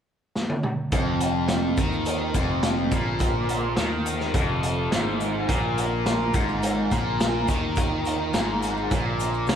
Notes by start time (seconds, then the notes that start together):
0.35 snare
0.49 high tom
0.63 mid tom
0.92 F1 F2 F3 C4 F4 A4, kick, closed hi-hat, maracas
1.20 closed hi-hat, maracas
1.48 snare, closed hi-hat, maracas
1.77 D#2 D#3, kick, closed hi-hat, maracas
1.92 maracas
2.05 closed hi-hat, maracas
2.34 F1 F2, kick, closed hi-hat, maracas
2.63 snare, closed hi-hat, maracas
2.91 A#1 A#2, kick, closed hi-hat, maracas
3.19 kick, closed hi-hat, maracas
3.49 closed hi-hat
3.76 D#2 D#3, snare, closed hi-hat, maracas
4.06 closed hi-hat, maracas
4.20 snare, maracas
4.34 F1 F2, kick, closed hi-hat, maracas
4.63 closed hi-hat
4.92 G#1 G#2, snare, closed hi-hat, maracas
5.20 closed hi-hat, maracas
5.47 A#1 A#2 F3 A#3 A#4, kick, closed hi-hat, maracas
5.78 closed hi-hat, maracas
6.06 snare, closed hi-hat, maracas
6.34 G#1 G#2, kick, closed hi-hat, maracas
6.49 maracas
6.63 closed hi-hat, maracas
6.91 A#1 A#2, kick, closed hi-hat, maracas
7.20 snare, closed hi-hat, maracas
7.48 D#2 D#3, kick, closed hi-hat, maracas
7.75 kick, closed hi-hat, maracas
8.05 closed hi-hat, maracas
8.33 G#1 G#2, snare, closed hi-hat, maracas
8.62 closed hi-hat, maracas
8.77 maracas
8.91 A#1 A#2, kick, closed hi-hat, maracas
9.20 closed hi-hat, maracas
9.34 maracas
9.47 C#2 C#3, snare, closed hi-hat, maracas